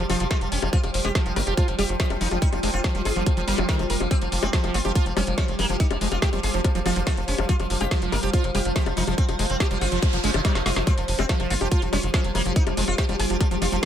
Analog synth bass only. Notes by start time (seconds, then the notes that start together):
0.10 F1
0.20 F1
0.41 F1
0.52 F1
0.62 F1
0.84 F1
0.94 F1
1.05 F1
1.26 F1
1.36 G1
1.47 F1
1.68 F1
1.79 F1
1.89 F1
2.10 F1
2.21 F1
2.31 F1
2.52 F1
2.63 F1
2.74 F1
2.95 F1
3.05 G1
3.16 F1
3.37 F1
3.48 G1
3.58 F1
3.79 F1
3.90 F1
4.00 F1
4.22 F1
4.32 F1
4.43 F1
4.64 F1
4.74 G1
4.85 F1
5.06 F1
5.17 F1
5.27 F1
5.48 F1
5.59 F1
5.69 F1
5.91 F1
6.01 F1
6.12 F1
6.33 F1
6.43 G1
6.54 F1
6.75 F1
6.86 F1
6.96 F1
7.17 F1
7.28 F1
7.38 F1
7.60 F1
7.70 F1
7.81 F1
8.02 F1
8.12 G1
8.23 F1
8.44 F1
8.55 F1
8.65 F1
8.86 F1
8.97 F1
9.07 F1
9.29 F1
9.39 F1
9.50 F1
9.71 F1
9.81 G1
9.92 F1
10.13 F1
10.24 G1
10.34 F1
10.55 F1
10.66 F1
10.76 F1
10.98 F1
11.08 F1
11.19 F1
11.40 F1
11.50 G1
11.61 F1
11.82 F1
11.93 F1
12.03 F1
12.24 F1
12.35 F1
12.45 F1
12.67 F1
12.77 F1
12.88 F1
13.09 F1
13.19 G1
13.30 F1
13.51 F1
13.62 F1
13.72 F1